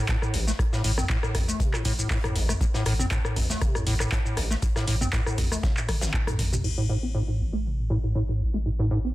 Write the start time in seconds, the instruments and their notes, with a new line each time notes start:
0.08 acid bass A2, kick, snare, clap, closed hi-hat, shaker
0.22 acid bass A2, cross-stick, shaker
0.34 sub bass A1, acid bass A1, closed hi-hat, open hi-hat
0.47 acid bass A3, snare, shaker
0.59 acid bass A2, kick, cross-stick, closed hi-hat, shaker
0.73 acid bass A2, snare, shaker
0.84 sub bass A1, acid bass A2, closed hi-hat, open hi-hat
0.98 acid bass C4, cross-stick, mid tom, shaker
1.09 acid bass A2, kick, snare, clap, closed hi-hat, shaker
1.23 acid bass A2, cross-stick, shaker
1.35 acid bass A1, sub bass A1, kick, cross-stick, closed hi-hat, mid tom, open hi-hat
1.48 acid bass A3, closed hi-hat, shaker
1.60 acid bass C3, kick, closed hi-hat, shaker
1.73 acid bass A2, cross-stick, clap, shaker
1.85 sub bass A1, acid bass A2, kick, closed hi-hat, open hi-hat
1.99 acid bass A2, shaker
2.10 acid bass A2, kick, cross-stick, snare, clap, open hi-hat, shaker
2.24 acid bass A2, cross-stick, closed hi-hat, mid tom, shaker
2.35 acid bass A1, sub bass A1, closed hi-hat, open hi-hat
2.49 acid bass A3, cross-stick, mid tom, shaker
2.61 acid bass A2, kick, closed hi-hat, shaker
2.74 acid bass A2, snare, shaker
2.86 sub bass A1, acid bass A2, cross-stick, closed hi-hat, open hi-hat
2.99 acid bass C4, mid tom, shaker
3.10 acid bass A2, kick, snare, clap, closed hi-hat, shaker
3.25 acid bass A2, cross-stick, shaker
3.36 acid bass A1, sub bass A1, kick, closed hi-hat, mid tom, open hi-hat
3.50 acid bass A3, snare, shaker
3.61 acid bass C3, kick, cross-stick, closed hi-hat, shaker
3.75 acid bass A2, cross-stick, mid tom, shaker
3.87 sub bass A1, acid bass A2, closed hi-hat, open hi-hat
4.00 acid bass A2, cross-stick, clap, shaker
4.12 acid bass A2, kick, snare, clap, closed hi-hat, shaker
4.25 acid bass A2, shaker
4.37 acid bass A1, sub bass A1, cross-stick, closed hi-hat, open hi-hat
4.50 acid bass A3, snare, shaker
4.62 acid bass A2, kick, closed hi-hat, shaker
4.76 acid bass A2, cross-stick, snare, shaker
4.87 sub bass A1, acid bass A2, closed hi-hat, open hi-hat
5.01 acid bass C4, mid tom, shaker
5.13 acid bass A2, kick, cross-stick, snare, clap, closed hi-hat, shaker
5.26 acid bass A2, cross-stick, shaker
5.38 acid bass A1, sub bass A1, kick, closed hi-hat, mid tom, open hi-hat
5.52 acid bass A3, cross-stick, closed hi-hat, shaker
5.63 acid bass C3, kick, snare, closed hi-hat, shaker
5.77 acid bass A2, clap, shaker
5.89 sub bass A1, acid bass A3, kick, cross-stick, closed hi-hat, open hi-hat, high tom
6.01 acid bass A1, snare, closed hi-hat, high tom, shaker
6.14 acid bass D3, kick, clap, mid tom, shaker
6.27 acid bass A2, cross-stick, closed hi-hat, mid tom, shaker
6.39 sub bass A1, acid bass A3, closed hi-hat, mid tom, open hi-hat
6.52 acid bass C3, mid tom, shaker
6.64 sub bass A1, acid bass A2, crash
6.78 acid bass A2
6.89 acid bass A2
7.03 acid bass C4
7.15 acid bass A2
7.28 acid bass A2
7.40 acid bass A1
7.53 acid bass A3
7.65 acid bass C3
7.79 acid bass A2
7.90 acid bass A2
8.04 acid bass A2
8.15 acid bass A2
8.29 acid bass A2
8.41 acid bass A1
8.54 acid bass A3
8.66 acid bass A2
8.79 acid bass A2
8.91 acid bass A2
9.05 acid bass C4